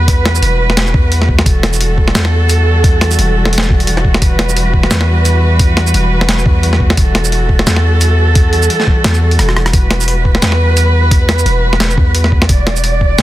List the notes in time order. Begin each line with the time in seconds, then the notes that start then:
Already playing: E2 E3 G3 F#4 B4
0.08 kick, closed hi-hat
0.26 snare, closed hi-hat
0.35 shaker
0.42 E1, closed hi-hat
0.70 snare
0.77 snare, closed hi-hat
0.87 shaker
0.94 E2, kick
1.12 closed hi-hat
1.22 snare
1.29 kick
1.39 snare
1.46 E1 A4, kick, closed hi-hat
1.63 snare, closed hi-hat
1.73 shaker
1.81 closed hi-hat
1.98 kick
2.08 snare
2.15 E2, snare, closed hi-hat, shaker
2.25 snare
2.49 closed hi-hat, shaker
2.84 kick, closed hi-hat
3.01 snare, closed hi-hat
3.11 shaker
3.19 E1, closed hi-hat
3.45 snare
3.53 closed hi-hat
3.58 snare
3.63 shaker
3.70 E1, kick
3.80 closed hi-hat
3.87 closed hi-hat
3.97 snare
4.05 kick
4.14 snare
4.22 E1 B4, kick, closed hi-hat
4.39 snare, closed hi-hat
4.49 shaker
4.57 closed hi-hat
4.74 kick
4.83 snare
4.91 E2, snare, closed hi-hat, shaker
5.01 snare
5.25 closed hi-hat, shaker
5.59 kick, closed hi-hat
5.77 snare, closed hi-hat
5.87 shaker
5.94 E1, closed hi-hat
6.21 snare
6.29 snare, closed hi-hat
6.39 shaker
6.46 E2, kick
6.63 closed hi-hat
6.73 snare
6.80 kick
6.90 snare
6.97 E1 A4, kick, closed hi-hat
7.15 snare, closed hi-hat
7.24 shaker
7.32 closed hi-hat
7.49 kick
7.59 snare
7.66 E2, snare, closed hi-hat, shaker
7.76 snare
8.01 closed hi-hat, shaker
8.35 kick, closed hi-hat
8.53 closed hi-hat
8.62 shaker
8.70 closed hi-hat
8.80 snare
8.87 kick
9.04 E2, snare, closed hi-hat
9.14 shaker
9.31 closed hi-hat
9.39 E1, cross-stick, closed hi-hat
9.49 cross-stick
9.56 cross-stick
9.66 cross-stick, closed hi-hat
9.73 E1 B4, kick, closed hi-hat
9.91 snare, closed hi-hat
10.00 shaker
10.08 closed hi-hat
10.25 kick
10.35 snare
10.42 E2, snare, closed hi-hat, shaker
10.52 snare
10.77 closed hi-hat, shaker
11.11 kick, closed hi-hat
11.29 snare, closed hi-hat
11.38 shaker
11.46 E1, closed hi-hat
11.73 snare
11.80 snare, closed hi-hat
11.90 shaker
11.97 E2, kick
12.15 closed hi-hat
12.24 snare
12.32 kick
12.42 snare
12.49 E1 D5, kick, closed hi-hat
12.67 snare, closed hi-hat
12.76 shaker
12.84 closed hi-hat
13.01 kick
13.18 E2, snare, closed hi-hat, shaker